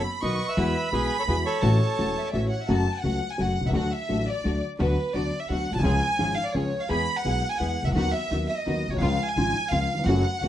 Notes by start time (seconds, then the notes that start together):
Already playing: B5
0.22 B1 B2 D#3 F#3 B3 D#4 F#4 B4 D#5 C#6
0.48 B4 E5
0.57 E2 E3 G#3 B3 E4 F#4 B5
0.92 B1 B2 E3 G#3 B3 E4 F#4 G#4 B4
1.19 A4 C#5
1.27 E2 E3 G#3 B3 E4 F#4 G#4 B4
1.45 A4 C#5
1.62 A1 A2 E3 A3 C#4 F#4 A5
1.97 E1 E2 E3 A3 C#4 F#4
2.17 E5
2.27 D5
2.33 A1 A2 E3 A3 C#4 F#4 C#5 E5
2.51 F#5
2.61 E5
2.68 F#1 F#2 C#3 F#3 A3 C#4 F#4 A5
2.96 F#5
3.03 C#2 C#3 F#3 A3 C#4 F#4
3.31 G#5
3.38 F#1 F#2 C#3 F#3 A3 C#4 F#4 F#5
3.61 B1
3.65 C2 C#2 E5
3.70 C#2 D2 D3 F#3 A3 F#4
3.74 D2 A3 D4 F#4 F#5
3.92 E5
4.09 A1 A2 D3 F#3 A3 D4 F#4
4.28 D5
4.44 D2 D3 F#3 A3 D4 F#4
4.79 D2 D3 F#3 B3 D4 F#4 B4
5.14 D2 D3 F#3 B3 D4 F#4 D5
5.41 E5
5.49 D2 D3 F#3 B3 D4 F#4 F#5
5.71 A#1
5.75 B1 C2 A5
5.80 C2 C#2 C#3 F3 G#3 C#4
5.84 C#2 C#4 F4 G#4 G#5
6.19 G#1 G#2 F3 G#3 C#4 F4 G#4
6.37 F5
6.45 D5
6.54 C#2 C#3 F3 G#3 C#4 F4 G#4 C#5
6.81 F5
6.89 E2 E3 G#3 B3 E4 G#4 B5
7.17 F#5
7.25 B1 B2 E3 G#3 B3 E4 G#4
7.52 G#5
7.60 E2 E3 G#3 B3 E4 G#4 F#5
7.83 C2
7.87 C#2 E5
7.92 D2 D#2 B3 D#4 F#4 F#5
7.96 D#2 D#3 F#3 B3 F#4
8.13 E5
8.30 D#2 D#3 F#3 B3 D#4 F#4
8.48 E5
8.58 D#5
8.66 D#2 D#3 F#3 B3 D#4 F#4
8.88 A#1
8.92 B1 C#5
8.96 C2
9.01 C#2 C#3 F3 G#3 C#4 F4 F5
9.27 G#5
9.36 G#1 G#2 C#3 F3 G#3 C#4 F4
9.71 C#2 C#3 F3 G#3 C#4 F4 F5
9.94 D#2
9.99 E2
10.04 F#1 F2 A3 C#4 F#4 F#5
10.08 F#2 C#3 F#3 A3 F#4
10.41 C#2 C#3 F#3 A3 C#4 F#4